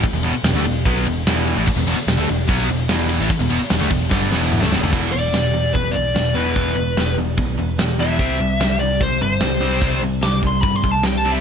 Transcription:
0.03 muted picked electric bass stroke, muted overdriven electric guitar stroke, kick, ride
0.13 picked electric bass E1, overdriven electric guitar E2 B2
0.23 picked electric bass E1, overdriven electric guitar E2 B2, ride
0.34 muted picked electric bass stroke, muted overdriven electric guitar stroke
0.44 picked electric bass E1, overdriven electric guitar E2 B2, snare, ride
0.53 picked electric bass D2, overdriven electric guitar D3 A3
0.64 picked electric bass E1, overdriven electric guitar E2 B2, ride
0.85 picked electric bass B1, overdriven electric guitar B2 F#3 B3, kick, ride
0.96 snare
1.05 picked electric bass E1, overdriven electric guitar E2 B2, ride
1.26 picked electric bass E1, overdriven electric guitar E2 B2 E3, snare, ride
1.48 ride
1.56 picked electric bass A1, overdriven electric guitar A2 E3
1.67 muted distorted electric guitar stroke, muted overdriven electric guitar stroke, muted picked electric bass stroke, kick, crash
1.76 picked electric bass E1, overdriven electric guitar E2 B2
1.87 picked electric bass E1, overdriven electric guitar E2 B2, ride
1.97 muted picked electric bass stroke, muted distorted electric guitar stroke, muted overdriven electric guitar stroke
2.07 picked electric bass E1, overdriven electric guitar E2 B2, snare, ride
2.18 picked electric bass D2, overdriven electric guitar D3 A3
2.28 picked electric bass E1, overdriven electric guitar E2 B2, ride
2.48 picked electric bass B1, overdriven electric guitar B2 F#3 B3, kick, ride
2.60 snare
2.68 picked electric bass E1, overdriven electric guitar E2 B2, ride
2.89 picked electric bass E1, overdriven electric guitar E2 B2 E3, snare, ride
3.09 ride
3.20 picked electric bass A1, overdriven electric guitar A2 E3
3.30 muted overdriven electric guitar stroke, muted distorted electric guitar stroke, muted picked electric bass stroke, kick, ride
3.39 picked electric bass E1, overdriven electric guitar E2 B2
3.49 picked electric bass E1, overdriven electric guitar E2 B2, ride
3.60 muted overdriven electric guitar stroke, muted distorted electric guitar stroke, muted picked electric bass stroke
3.70 picked electric bass E1, overdriven electric guitar E2 B2, snare, ride
3.80 picked electric bass D2, overdriven electric guitar D3 A3, snare
3.89 picked electric bass E1, overdriven electric guitar E2 B2, kick, ride
4.10 picked electric bass G1, overdriven electric guitar G2 D3 G3, kick, snare
4.30 picked electric bass E1, overdriven electric guitar E2 B2 E3, snare
4.52 mid tom
4.61 picked electric bass D2, overdriven electric guitar D3 A3, snare
4.72 picked electric bass E1, overdriven electric guitar E2 B2, snare
4.82 picked electric bass D2, overdriven electric guitar D3 A3, floor tom
4.93 picked electric bass E1, overdriven electric guitar E2 B2 E3, kick, crash
5.12 picked electric bass E1, overdriven electric guitar E2 B2, lead electric guitar D5
5.32 picked electric bass E1, overdriven electric guitar E2 B2, snare, open hi-hat
5.54 overdriven electric guitar E2 B2
5.73 picked electric bass E1, overdriven electric guitar E2 B2, lead electric guitar B4, kick, open hi-hat
5.92 overdriven electric guitar E2 B2, lead electric guitar D5
5.96 picked electric bass B1
6.15 picked electric bass E1, overdriven electric guitar E2 B2, snare, open hi-hat
6.35 picked electric bass E1, overdriven electric guitar E2 B2 E3, lead electric guitar B4
6.55 picked electric bass E1, overdriven electric guitar E2 B2 E3, kick, open hi-hat
6.76 picked electric bass E1, overdriven electric guitar E2 B2
6.97 picked electric bass E1, overdriven electric guitar E2 B2, snare, open hi-hat
7.18 picked electric bass E1, overdriven electric guitar E2 B2
7.38 picked electric bass B1, overdriven electric guitar E2 B2, kick, open hi-hat
7.59 picked electric bass E1, overdriven electric guitar E2 B2
7.79 picked electric bass E1, overdriven electric guitar E2 B2, snare, open hi-hat
7.99 overdriven electric guitar E2 B2 E3, lead electric guitar E5
8.19 picked electric bass C2, overdriven electric guitar C3 G3 C4, kick, open hi-hat
8.40 picked electric bass C2, overdriven electric guitar C3 G3
8.60 picked electric bass C2, overdriven electric guitar C3 G3, snare, open hi-hat
8.79 overdriven electric guitar C3 G3, lead electric guitar D5
9.00 picked electric bass C2, overdriven electric guitar C3 G3, lead electric guitar C5, kick, open hi-hat
9.21 picked electric bass G1, overdriven electric guitar C3 G3, lead electric guitar C5
9.41 picked electric bass C2, overdriven electric guitar C3 G3, snare, open hi-hat
9.61 picked electric bass C2, overdriven electric guitar C3 G3 C4
9.81 picked electric bass C2, overdriven electric guitar C3 G3 C4, kick, open hi-hat
10.02 picked electric bass C2, overdriven electric guitar C3 G3
10.21 picked electric bass C2, overdriven electric guitar C3 G3, lead electric guitar D6, snare, open hi-hat
10.42 picked electric bass C2, overdriven electric guitar C3 G3, kick
10.47 lead electric guitar C6
10.62 picked electric bass G2, overdriven electric guitar C3 G3, lead electric guitar B5, kick, open hi-hat
10.76 lead electric guitar C6
10.84 picked electric bass C2, overdriven electric guitar C3 G3, kick
10.91 lead electric guitar A5
11.03 picked electric bass C2, overdriven electric guitar C3 G3, lead electric guitar G5, snare, open hi-hat
11.17 lead electric guitar A5
11.25 overdriven electric guitar C3 G3 C4
11.32 lead electric guitar E5

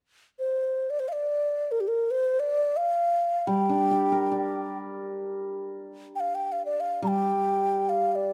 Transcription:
0.39 xiao C5
0.90 xiao D5
1.00 xiao C5
1.08 xiao F5
1.13 xiao D5
1.71 xiao A#4
1.80 xiao G4
1.88 xiao A#4
2.11 xiao C5
2.40 xiao D5
2.77 xiao F5
3.47 hammered dulcimer G3, xiao G5
3.69 hammered dulcimer D4
3.91 hammered dulcimer G4
4.12 hammered dulcimer A#4
4.32 hammered dulcimer D5
6.16 xiao G5
6.20 xiao F5
6.35 xiao G5
6.52 xiao F5
6.66 xiao D5
6.80 xiao F5
7.02 hammered dulcimer G3, xiao A#5
7.08 xiao G5
7.89 xiao F5
8.12 xiao D5 F5

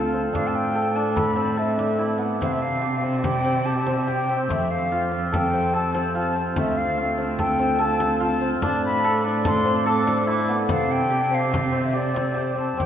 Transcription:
Already playing: cello D2, hammered dulcimer A3 C4 F4 A4, flute A5
0.13 hammered dulcimer C4
0.33 cello A2, hammered dulcimer D4, flute F5, frame drum
0.47 flute A5
0.55 flute G5
0.75 hammered dulcimer A4
0.95 hammered dulcimer D4, flute A5
1.16 hammered dulcimer A4, flute B5, frame drum
1.36 hammered dulcimer C4
1.57 hammered dulcimer A4, flute E5
1.77 hammered dulcimer D4, frame drum
1.99 hammered dulcimer E4, frame drum
2.18 hammered dulcimer B3
2.40 cello C3, hammered dulcimer C4, flute E5, frame drum
2.46 flute F5
2.52 flute E5
2.62 flute F5
2.82 hammered dulcimer G4
3.03 hammered dulcimer C4, frame drum
3.24 hammered dulcimer G4, flute G5, frame drum
3.45 hammered dulcimer C4, frame drum
3.65 hammered dulcimer G4, flute A5
3.87 hammered dulcimer C4, frame drum
4.01 flute A5
4.07 hammered dulcimer G4, flute G5, frame drum
4.29 hammered dulcimer C4
4.49 cello F2, hammered dulcimer A3, flute E5, frame drum
4.71 flute F5
4.92 hammered dulcimer F4
5.11 hammered dulcimer C4
5.32 hammered dulcimer A4, flute G5, frame drum
5.54 hammered dulcimer C4
5.74 hammered dulcimer A4, flute A5
5.94 hammered dulcimer C4, frame drum
6.15 hammered dulcimer F4, flute A5, frame drum
6.36 hammered dulcimer C4
6.56 cello D2, hammered dulcimer A3, flute E5, frame drum
6.77 flute F5
6.97 hammered dulcimer F4
7.18 hammered dulcimer C4
7.39 hammered dulcimer A4, flute G5, frame drum
7.59 hammered dulcimer C4
7.79 hammered dulcimer A4, flute A5
7.99 hammered dulcimer C4, frame drum
8.20 hammered dulcimer F4, flute A5, frame drum
8.41 hammered dulcimer C4
8.62 cello A2, hammered dulcimer D4, flute A5, frame drum
8.86 flute B5
9.04 hammered dulcimer A4
9.25 hammered dulcimer D4
9.44 hammered dulcimer A4, flute C6, frame drum
9.65 hammered dulcimer C4
9.86 hammered dulcimer A4, flute D6
10.06 hammered dulcimer D4, frame drum
10.27 hammered dulcimer E4, flute D6, frame drum
10.49 hammered dulcimer B3
10.68 cello C3, hammered dulcimer C4, flute F5, frame drum
10.91 flute G5
11.10 hammered dulcimer G4, frame drum
11.31 hammered dulcimer C4, flute F5
11.51 hammered dulcimer G4, frame drum
11.72 hammered dulcimer C4
11.85 flute E5
11.93 hammered dulcimer G4, flute D5
12.14 hammered dulcimer C4, frame drum
12.34 hammered dulcimer G4, frame drum
12.55 hammered dulcimer C4, flute A5, frame drum
12.77 cello F2, hammered dulcimer C4, flute G5, frame drum

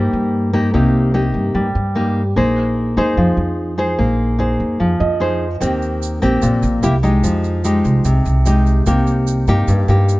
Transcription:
Already playing: upright bass G2, nylon-string guitar G3 A#3 D#4 G4, grand piano C5
0.13 upright bass G2
0.53 nylon-string guitar A#3 D#4 G4
0.74 upright bass C2, nylon-string guitar C3 A#3 D#4 G4
1.14 nylon-string guitar A#3 D#4 G4
1.34 upright bass G2
1.55 upright bass G2, nylon-string guitar G3
1.75 upright bass G2
1.95 nylon-string guitar A#3 D#4 G4
2.36 upright bass A#1, nylon-string guitar A#3 D#4 G#4 C5
2.97 upright bass F2, nylon-string guitar D#4 G#4 C5
3.17 upright bass F2, nylon-string guitar F3
3.37 upright bass F2
3.78 nylon-string guitar D#4 G#4 C5
3.98 upright bass A#1, nylon-string guitar A#3
4.39 nylon-string guitar D#4 G#4 C5
4.60 upright bass F2
4.80 upright bass F2, nylon-string guitar F3
5.00 upright bass F2, grand piano D#5
5.20 nylon-string guitar D#4 G#4 C5
5.60 upright bass D#2, nylon-string guitar D#3 A#3 C4 G4, shaker
5.82 shaker
6.02 shaker
6.22 upright bass A#1, nylon-string guitar A#3 C4 G4, shaker
6.42 upright bass A#1, nylon-string guitar A#2, shaker
6.63 upright bass A#1, shaker
6.83 upright bass C2, nylon-string guitar A#3 E4 G4, shaker
7.03 nylon-string guitar G#3 D#4 G4, shaker
7.24 upright bass F2, nylon-string guitar F3, shaker
7.44 shaker
7.64 nylon-string guitar G#3 D#4 G4, shaker
7.85 upright bass C2, shaker
8.05 upright bass C2, nylon-string guitar C3, shaker
8.25 upright bass C2, shaker
8.46 nylon-string guitar G#3 D#4 G4, shaker
8.66 shaker
8.86 upright bass C2, nylon-string guitar C3 A#3 D#4 G4, shaker
9.07 shaker
9.27 shaker
9.47 upright bass G2, nylon-string guitar A#3 D#4 G4, shaker
9.68 upright bass G2, nylon-string guitar G2, shaker
9.88 upright bass G2, nylon-string guitar A#3 D#4 G4, shaker
10.09 shaker

